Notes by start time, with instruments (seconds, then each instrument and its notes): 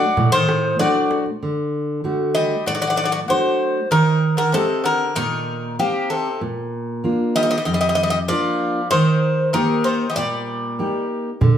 Already playing: bouzouki F#3 D5
0.02 darbuka tek
0.17 steel-string acoustic guitar A2, darbuka tek, darbuka dum
0.32 bouzouki D#3 C5, darbuka tek
0.49 darbuka tek
0.64 darbuka tek
0.79 bouzouki F#3 D5, steel-string acoustic guitar A3 D4 F#4, darbuka tek
0.96 darbuka tek
1.11 darbuka tek
1.26 darbuka tek
1.43 steel-string acoustic guitar D3
2.04 steel-string acoustic guitar D3 A3 F#4
2.35 bouzouki G3 D#5
2.66 steel-string acoustic guitar A2, bouzouki F#3 D5
2.75 bouzouki F#3 D5
2.81 bouzouki F#3 D5
2.87 bouzouki F#3 D5
2.96 bouzouki F#3 D5
3.04 bouzouki F#3 D5
3.12 bouzouki F#3 D5
3.28 bouzouki F#3 C5, steel-string acoustic guitar A3 D4 F#4
3.91 bouzouki D#3 A#4, steel-string acoustic guitar D#3
4.37 bouzouki D3 A#4
4.52 bouzouki C3 A4, steel-string acoustic guitar C4 G4 D#5
4.84 bouzouki D3 A#4
5.15 steel-string acoustic guitar A#2, bouzouki D#3 A#4
5.79 bouzouki A#3 G4, steel-string acoustic guitar C4 D#4 G4
6.10 bouzouki C3 A4
6.41 steel-string acoustic guitar A#2
7.04 steel-string acoustic guitar A#3 D4 F4
7.36 bouzouki G3 D#5
7.43 bouzouki G3 D#5
7.51 bouzouki G3 D#5
7.58 bouzouki G3 D#5
7.65 steel-string acoustic guitar F2, bouzouki G3 D#5
7.73 bouzouki G3 D#5
7.81 bouzouki G3 D#5
7.89 bouzouki G3 D#5
7.95 bouzouki G3 D#5
8.03 bouzouki G3 D#5
8.10 bouzouki G3 D#5
8.28 bouzouki F3 D5, steel-string acoustic guitar A#3 D4 F4
8.91 bouzouki D#3 C5, steel-string acoustic guitar D#3
9.53 bouzouki D#3 A#4, steel-string acoustic guitar A#3 D#4 G4
9.84 bouzouki D#3 C5
10.10 bouzouki G3 D#5
10.16 steel-string acoustic guitar A#2, bouzouki G3 D5
10.79 steel-string acoustic guitar A#3 D#4 G4
11.41 steel-string acoustic guitar D3, darbuka dum